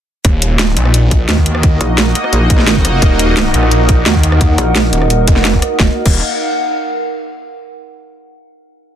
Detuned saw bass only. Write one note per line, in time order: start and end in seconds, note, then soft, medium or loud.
0.25 0.75 D#1 loud
0.77 1.27 A#1 loud
1.29 1.79 D#2 medium
3.02 3.53 D#1 loud
3.54 4.05 A#1 medium
4.06 4.57 D#2 loud
5.28 5.61 F1 loud
5.80 5.89 D#1 medium
6.06 6.22 D#1 loud